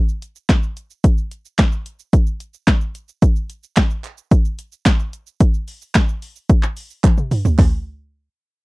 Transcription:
0.09 shaker
0.22 closed hi-hat, shaker
0.36 shaker
0.49 kick, snare, clap, closed hi-hat, shaker
0.63 shaker
0.77 closed hi-hat, shaker
0.90 shaker
1.04 kick, closed hi-hat, shaker
1.18 shaker
1.31 closed hi-hat, shaker
1.45 shaker
1.58 kick, snare, clap, closed hi-hat, shaker
1.72 shaker
1.86 closed hi-hat, shaker
1.99 shaker
2.13 kick, closed hi-hat, shaker
2.27 shaker
2.40 closed hi-hat, shaker
2.54 shaker
2.67 kick, snare, clap, closed hi-hat, shaker
2.81 shaker
2.95 closed hi-hat, shaker
3.09 shaker
3.22 kick, closed hi-hat, shaker
3.36 shaker
3.50 closed hi-hat, shaker
3.63 shaker
3.77 kick, snare, clap, closed hi-hat, shaker
3.90 shaker
4.04 clap, closed hi-hat, shaker
4.18 shaker
4.31 kick, closed hi-hat, shaker
4.45 shaker
4.59 closed hi-hat, shaker
4.72 shaker
4.86 kick, snare, clap, closed hi-hat, shaker
4.99 shaker
5.13 closed hi-hat, shaker
5.27 shaker
5.40 kick, closed hi-hat, shaker
5.54 shaker
5.68 open hi-hat, shaker
5.82 shaker
5.95 kick, snare, clap, closed hi-hat, shaker
6.09 shaker
6.22 open hi-hat, shaker
6.36 shaker
6.49 kick, closed hi-hat, shaker
6.63 clap, shaker
6.77 open hi-hat, shaker
6.90 shaker
7.04 kick, clap, closed hi-hat, high tom, shaker
7.18 mid tom, shaker
7.31 mid tom, open hi-hat, shaker
7.45 floor tom, shaker
7.59 kick, clap, floor tom, open hi-hat

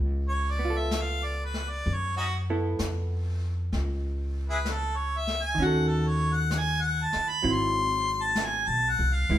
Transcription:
Already playing: C#2
0.28 C#5
0.51 D5
0.59 B3
0.65 F4
0.70 A4
0.77 E5
0.91 brush sweep, snare, hi-hat pedal
1.01 F5
1.24 D5
1.45 B4
1.54 snare
1.70 D5
1.84 F#2, brush sweep
1.94 C#5
2.17 C#4 D#4 F#4
2.50 B3 E4 A4
2.79 F2, brush sweep, snare, hi-hat pedal
3.72 C#2, brush sweep, snare
4.50 E4 G#4 B4
4.65 brush sweep, snare, hi-hat pedal
4.73 A4
4.97 C#5
5.18 E5
5.27 snare
5.43 G#5
5.55 D#2 D#3, brush sweep
5.60 C#4 F#4
5.64 A4 F#5
5.88 A4
6.08 C#5
6.34 F#5
6.51 brush sweep, snare, hi-hat pedal
6.59 G#5
6.82 F#5
7.04 A5
7.13 muted upright bass stroke, snare
7.29 B5
7.42 G#1 F#3 C4 E4, brush sweep
7.52 C6
8.22 A5
8.35 brush sweep, snare, hi-hat pedal
8.45 G#5
8.67 B1 A5
8.90 F#5
8.99 C2
9.14 F5
9.29 C#2 G#3 B3 E4

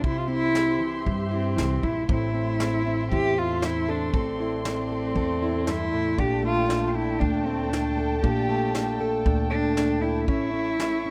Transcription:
0.02 C2 C3 G4 E5 C6, kick
0.06 E4
0.19 F4
0.28 C4 E4
0.55 snare
0.79 E3
1.04 G2, kick
1.31 C4 E4
1.56 C2 E3, snare
1.83 A#1 E4, kick
2.08 A1 A2 A3 C4 E4 E5 C6, kick
2.34 C4
2.60 C4, snare
2.86 C4
3.12 E2 E4 G4, kick
3.37 E4 F4
3.62 C4 E4, snare
3.89 D4 A4
4.12 A1 A2 C4 A4 D5, kick
4.40 E4
4.65 C4 A4, snare
4.92 A4
5.15 E2 A4, kick
5.43 E4
5.67 G2 E4, snare
5.93 A2
6.18 A#1 A#2 D4 G4 G5 A5, kick
6.42 A3 F4
6.68 D4, snare
6.87 F4
6.94 D4 E4
7.19 D2 D4, kick
7.46 A3 C4
7.70 D4, snare
7.98 A4
8.22 A#1 A#2 D4 G4, kick
8.49 A3
8.75 D4, snare
9.01 A4
9.26 D2 D4, kick
9.50 A3 D4
9.77 D4, snare
10.01 D4 E4
10.28 A1 A2 C#4 E4 E5 C#6, kick
10.54 C#4
10.80 C#4, snare
11.06 C#4

